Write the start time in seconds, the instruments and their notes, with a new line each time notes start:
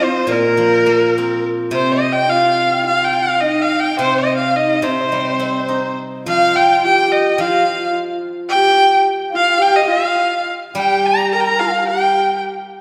Already playing: guzheng F3
0.01 horsehead fiddle C4, xiao C5, erhu C5
0.27 guzheng A#2, xiao A#4
0.31 horsehead fiddle A#3, erhu A#4
0.57 guzheng F3
0.86 guzheng A#3
1.17 guzheng C4, xiao A#4
1.71 guzheng C3, horsehead fiddle C4, xiao C5, erhu C5
1.92 erhu D#5, xiao D#5
2.12 erhu G5
2.29 horsehead fiddle F4, erhu F5, xiao F5
2.73 xiao G5
2.86 horsehead fiddle F4, erhu F5, xiao F5
3.04 erhu G5
3.22 erhu F5, xiao F5
3.40 erhu D#5, xiao D#5
3.45 horsehead fiddle D#4
3.61 erhu F5, xiao F5 G5
3.80 erhu G5
3.84 xiao G5
3.99 guzheng C3, horsehead fiddle C4, erhu C5
4.05 xiao C5
4.18 erhu D#5
4.37 erhu F5
4.42 xiao F5
4.56 horsehead fiddle D#4, erhu D#5, xiao D#5
4.82 guzheng C3, erhu C5, xiao C5
4.86 horsehead fiddle C4
4.92 xiao D#5
5.01 xiao C5
5.08 guzheng G3, xiao D#5
5.19 xiao C5
5.25 xiao D#5
5.34 xiao C5
5.39 guzheng C4, xiao D#5
5.53 xiao C5
5.60 xiao D#5
5.67 guzheng D#4, xiao C5
6.26 guzheng F3, horsehead fiddle F4, erhu F5, xiao F5
6.55 erhu G5, xiao G5
6.85 horsehead fiddle G4, erhu G5, xiao G5
7.12 erhu D#5
7.38 guzheng F3, horsehead fiddle F4, xiao F5, erhu F5
7.81 xiao F5
8.49 horsehead fiddle G4, erhu G5, xiao G5
9.30 horsehead fiddle F4, xiao F5
9.36 erhu F5
9.58 horsehead fiddle G4, xiao G5, erhu G5
9.75 erhu D#5
9.81 xiao G5
9.86 horsehead fiddle F4, xiao F5
9.91 erhu F5
10.75 guzheng G3, horsehead fiddle G4, xiao G5, erhu G5
11.06 erhu A#5
11.31 horsehead fiddle A#4, erhu A#5
11.36 xiao A#5
11.40 erhu G5
11.45 erhu A#5
11.59 horsehead fiddle F4, erhu F5, xiao F5
11.88 horsehead fiddle G4, erhu G5, xiao G5
12.33 xiao G5